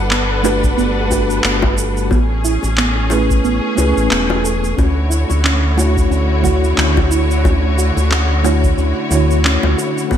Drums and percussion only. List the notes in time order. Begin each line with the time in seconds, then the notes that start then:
0.11 clap, shaker
0.45 high bongo, shaker
0.64 kick, shaker
0.79 shaker
1.11 kick, high bongo, shaker
1.30 shaker
1.44 clap, shaker
1.62 kick, high bongo
1.78 shaker
1.97 shaker
2.11 kick, high bongo, shaker
2.45 shaker
2.63 high bongo, shaker
2.78 clap, shaker
3.10 high bongo, shaker
3.30 kick, shaker
3.45 shaker
3.78 high bongo, shaker
3.98 shaker
4.11 clap, shaker
4.30 high bongo
4.45 shaker
4.64 shaker
4.78 kick, high bongo, shaker
5.11 shaker
5.30 high bongo, shaker
5.45 clap, shaker
5.78 high bongo, shaker
5.97 kick, shaker
6.12 shaker
6.44 kick, high bongo, shaker
6.64 shaker
6.78 clap, shaker
6.97 kick, high bongo
7.11 shaker
7.31 shaker
7.45 kick, high bongo, shaker
7.79 shaker
7.97 high bongo, shaker
8.12 clap, shaker
8.44 high bongo, shaker
8.64 kick, shaker
8.78 shaker
9.11 high bongo, shaker
9.31 shaker
9.45 clap, shaker
9.63 high bongo
9.79 shaker
9.98 shaker
10.11 kick, high bongo, shaker